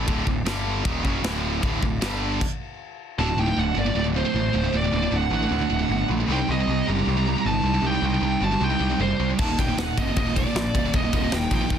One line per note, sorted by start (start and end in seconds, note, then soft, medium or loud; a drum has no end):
0.07 0.26 D1 medium
0.07 0.25 D2 loud
0.07 0.26 A2 loud
0.07 0.26 D3 loud
0.07 kick loud
0.07 ride bell medium
0.26 0.43 D1 medium
0.26 0.42 D2 medium
0.26 0.43 A2 medium
0.26 kick medium
0.44 0.81 G1 medium
0.44 0.83 G2 medium
0.44 0.84 D3 loud
0.44 0.84 G3 loud
0.44 snare loud
0.44 ride bell medium
0.84 1.03 D#1 loud
0.84 1.02 D#2 medium
0.84 1.02 A#2 medium
0.84 1.03 D#3 loud
0.84 kick loud
0.84 ride bell medium
1.02 1.21 F#1 medium
1.02 1.22 F#2 medium
1.02 1.22 C#3 medium
1.02 1.23 F#3 loud
1.02 kick loud
1.22 1.59 D1 loud
1.22 1.60 D2 medium
1.22 1.60 A2 loud
1.22 1.61 D3 loud
1.22 snare loud
1.22 ride bell medium
1.61 1.81 D1 medium
1.61 1.80 D2 loud
1.61 1.80 A2 loud
1.61 1.82 D3 loud
1.61 kick loud
1.61 ride bell medium
1.82 2.00 D1 medium
1.82 1.98 D2 medium
1.82 1.98 A2 medium
1.82 kick medium
2.01 2.38 G1 medium
2.01 2.40 G2 medium
2.01 2.40 D3 medium
2.01 2.40 G3 loud
2.01 snare loud
2.01 ride bell medium
2.41 kick loud
2.41 crash loud
3.18 3.32 D1 loud
3.18 3.27 D2 medium
3.18 3.27 A2 loud
3.18 3.28 D3 loud
3.18 3.39 A5 medium
3.23 3.40 F#4 medium
3.28 3.37 D2 medium
3.28 3.37 A2 medium
3.37 3.51 D1 medium
3.37 3.47 D2 medium
3.37 3.46 A2 medium
3.37 3.60 D#4 medium
3.37 3.59 G5 loud
3.48 3.56 D2 medium
3.48 3.56 A2 medium
3.57 3.71 D1 loud
3.57 3.75 D2 medium
3.57 3.75 A2 medium
3.57 3.78 D4 medium
3.57 3.78 F#5 loud
3.76 3.90 G1 medium
3.76 3.86 D2 medium
3.76 3.85 A2 medium
3.76 3.97 D5 loud
3.81 3.97 A#3 medium
3.86 3.95 D2 medium
3.86 3.95 A2 medium
3.95 4.23 D1 medium
3.95 4.04 D2 medium
3.95 4.03 A2 medium
3.95 4.04 A3 medium
3.95 4.03 D5 medium
4.05 4.13 D2 medium
4.05 4.13 A2 medium
4.14 4.23 D2 medium
4.14 4.23 A2 medium
4.14 4.71 A3 medium
4.14 4.76 C5 loud
4.25 4.32 D2 medium
4.25 4.32 A2 medium
4.33 4.48 A1 medium
4.33 4.52 D2 medium
4.33 4.52 A2 loud
4.53 4.68 D1 loud
4.53 4.61 D2 medium
4.53 4.61 A2 medium
4.62 4.71 D2 medium
4.62 4.72 A2 medium
4.73 4.87 D1 medium
4.73 4.81 D2 medium
4.73 4.81 A2 medium
4.73 4.93 A3 medium
4.77 4.95 D5 loud
4.82 4.91 D2 medium
4.82 4.90 A2 medium
4.92 5.06 D1 medium
4.92 5.01 D2 medium
4.92 5.01 A2 medium
4.92 5.12 A#3 medium
4.96 5.15 D5 medium
5.02 5.09 D2 medium
5.02 5.10 A2 medium
5.11 5.26 D1 medium
5.11 5.29 D2 medium
5.11 5.29 A2 medium
5.11 5.31 D4 medium
5.16 5.34 F#5 loud
5.30 5.45 A1 loud
5.30 5.38 D2 medium
5.30 5.38 A2 medium
5.30 6.06 D4 loud
5.35 6.07 F#5 loud
5.39 5.48 D2 medium
5.39 5.48 A2 medium
5.49 5.58 D2 medium
5.49 5.65 D2 medium
5.49 5.58 A2 medium
5.59 5.69 D2 medium
5.59 5.69 A2 medium
5.70 5.84 D1 loud
5.70 5.79 D2 medium
5.70 5.77 A2 medium
5.79 5.87 D2 medium
5.79 5.87 A2 medium
5.88 6.03 G1 medium
5.88 6.07 D2 medium
5.88 6.07 A2 medium
6.08 6.23 A#1 loud
6.08 6.17 D2 medium
6.08 6.17 A2 medium
6.18 6.26 D2 medium
6.18 6.27 A2 medium
6.27 6.42 C2 loud
6.27 6.36 C3 loud
6.27 6.36 G3 loud
6.27 6.37 C4 loud
6.31 6.48 D#4 medium
6.31 6.50 G5 loud
6.37 6.47 C3 medium
6.37 6.46 G3 medium
6.41 6.50 G3 loud
6.47 6.62 C2 medium
6.47 6.56 C3 medium
6.47 6.57 G3 medium
6.47 6.85 C4 medium
6.47 6.89 D#5 loud
6.52 6.59 G3 medium
6.58 6.66 C3 medium
6.58 6.67 G3 medium
6.67 6.81 C2 loud
6.67 6.85 C3 medium
6.67 6.84 G3 medium
6.86 7.01 F#1 medium
6.86 6.95 C3 medium
6.86 6.94 G3 loud
6.86 7.42 G4 loud
6.86 7.41 A#5 loud
6.95 7.04 C3 medium
6.95 7.05 G3 medium
7.06 7.34 C2 medium
7.06 7.15 C3 medium
7.06 7.16 G3 medium
7.16 7.24 C3 medium
7.16 7.24 G3 medium
7.25 7.35 C3 medium
7.25 7.34 G3 medium
7.35 7.43 C3 medium
7.35 7.43 G3 medium
7.44 7.59 G1 medium
7.44 7.62 C3 medium
7.44 7.61 G3 medium
7.44 7.85 A5 loud
7.48 7.83 D#4 medium
7.62 7.77 C2 loud
7.62 7.72 C3 medium
7.62 7.72 G3 medium
7.73 7.80 C3 medium
7.73 7.81 G3 medium
7.81 7.96 C2 medium
7.81 7.90 C3 loud
7.81 7.90 G3 loud
7.86 8.03 D#4 medium
7.86 8.04 G5 medium
7.91 8.00 C3 medium
7.91 8.00 G3 medium
8.01 8.16 C2 loud
8.01 8.09 C3 medium
8.01 8.09 G3 medium
8.06 8.40 D#4 medium
8.06 8.44 G5 loud
8.10 8.19 C3 medium
8.10 8.20 G3 medium
8.20 8.35 C2 medium
8.20 8.39 C3 medium
8.20 8.39 G3 medium
8.41 8.55 G1 medium
8.41 8.50 C3 medium
8.41 8.50 G3 medium
8.41 8.60 F#4 medium
8.41 8.62 A5 loud
8.52 8.60 C3 medium
8.52 8.60 G3 medium
8.60 8.74 C2 medium
8.60 8.70 C3 medium
8.60 8.69 G3 medium
8.60 9.02 G5 loud
8.66 8.99 D#4 medium
8.71 8.80 C3 medium
8.71 8.79 G3 medium
8.80 8.93 C2 loud
8.80 8.90 C3 medium
8.80 8.90 G3 medium
8.91 8.99 C3 medium
8.91 8.99 G3 medium
8.98 9.12 F#1 medium
8.98 9.17 C3 medium
8.98 9.17 G3 medium
8.98 9.27 C5 medium
9.04 9.29 G3 medium
9.19 9.33 C2 loud
9.19 9.29 C3 medium
9.19 9.28 G3 medium
9.30 9.39 C3 medium
9.30 9.39 G3 medium
9.39 9.52 D#1 medium
9.39 9.47 D#2 medium
9.39 9.47 A#2 loud
9.39 9.47 D#3 loud
9.39 9.58 A5 loud
9.39 kick loud
9.39 crash loud
9.44 9.59 D#4 medium
9.48 9.58 D#2 medium
9.48 9.57 A#2 medium
9.58 9.72 D#1 medium
9.58 9.68 D#2 medium
9.58 9.68 A#2 medium
9.58 9.77 D#4 medium
9.58 9.79 G5 loud
9.58 kick medium
9.58 ride medium
9.69 9.77 D#2 medium
9.69 9.77 A#2 medium
9.77 9.91 D#1 medium
9.77 9.95 D#2 medium
9.77 9.95 A#2 medium
9.77 9.98 D#4 medium
9.77 9.98 F#5 medium
9.77 snare loud
9.77 ride loud
9.97 10.10 G1 medium
9.97 10.06 D#2 medium
9.97 10.06 A#2 medium
9.97 10.16 D#5 medium
9.97 kick medium
9.97 ride medium
10.01 10.17 C4 medium
10.07 10.15 D#2 medium
10.07 10.16 A#2 medium
10.16 10.43 D#1 medium
10.16 10.25 D#2 medium
10.16 10.25 A#2 medium
10.16 10.36 D#5 medium
10.16 kick loud
10.16 ride loud
10.23 10.35 D#2 medium
10.23 10.34 A#2 medium
10.23 10.37 A#3 medium
10.36 10.45 D#2 medium
10.36 10.45 A#2 medium
10.36 10.90 D5 loud
10.36 kick medium
10.36 ride medium
10.42 10.92 A#3 medium
10.46 10.54 D#2 medium
10.46 10.55 A#2 medium
10.55 10.68 A#1 medium
10.55 10.72 D#2 medium
10.55 10.72 A#2 loud
10.55 snare loud
10.55 ride medium
10.74 10.88 D#1 medium
10.74 10.83 D#2 medium
10.74 10.83 A#2 medium
10.74 kick medium
10.74 ride medium
10.85 10.94 D#2 medium
10.85 10.93 A#2 medium
10.94 11.07 D#1 medium
10.94 11.02 D#2 medium
10.94 11.01 A#2 loud
10.94 11.14 D#5 medium
10.94 kick loud
10.94 ride loud
10.99 11.12 D#2 medium
10.99 11.12 A#2 medium
10.99 11.14 A#3 medium
11.12 11.26 D#1 medium
11.12 11.21 D#2 medium
11.12 11.21 A#2 medium
11.12 kick medium
11.12 ride medium
11.17 11.34 C4 medium
11.17 11.34 D#5 loud
11.22 11.31 D#2 medium
11.22 11.31 A#2 medium
11.32 11.45 D#1 medium
11.32 11.49 D#2 medium
11.32 11.49 A#2 medium
11.32 11.53 G5 medium
11.32 snare loud
11.32 ride loud
11.37 11.52 D#4 medium
11.51 11.64 A#1 medium
11.51 11.60 D#2 medium
11.51 11.60 A#2 medium
11.51 11.79 G5 loud
11.51 kick medium
11.51 ride medium
11.55 11.79 D#4 loud
11.61 11.70 D#2 medium
11.61 11.70 A#2 medium
11.70 11.79 D#2 loud
11.70 11.79 D#2 medium
11.70 11.79 A#2 loud
11.70 kick loud
11.70 ride loud